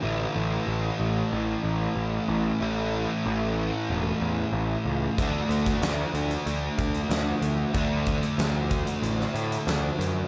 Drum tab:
HH |----------------|----------------|x-xxx-xxx-xxx-x-|x-xxx-xxx-xxx-x-|
SD |----------------|----------------|----o-------o---|----o----o--o---|
BD |----------------|----------------|o--o------o-----|o-o---o---------|